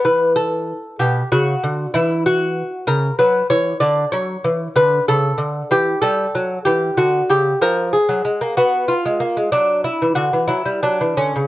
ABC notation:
X:1
M:12/8
L:1/16
Q:3/8=63
K:Bm
V:1 name="Lute"
B2 A4 G2 F4 E2 F4 ^A2 B2 c2 | d2 c4 B2 A4 G2 A4 G2 F2 G2 | ^A2 _A4 F2 =F4 D2 E2 ^F2 E2 D2 C2 |]
V:2 name="Lute" clef=bass
E,6 B,,2 C,2 D,2 E,6 C,2 F,2 E,2 | D,2 F,2 E,2 D,2 C,2 D,2 E,2 G,2 F,2 E,2 D,2 C,2 | =F,3 ^F, _A, ^A, _C3 _A, ^A, _A, F,3 E, D, E, F, G, F, E, D, ^C, |]